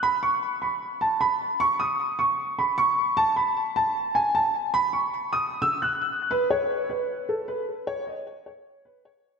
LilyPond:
\new Staff \with { instrumentName = "Grand piano" } { \time 4/4 \key cis \minor \tempo 4 = 153 b''8 cis'''4 b''4 a''8 b''8 r8 | cis'''8 dis'''4 cis'''4 b''8 cis'''4 | a''8 b''4 a''4 gis''8 a''8 r8 | b''8 cis'''4 dis'''8. e'''8 fis'''4~ fis'''16 |
b'8 cis''4 b'4 a'8 b'8 r8 | cis''8 dis''4 cis''4 b'8 cis''4 | }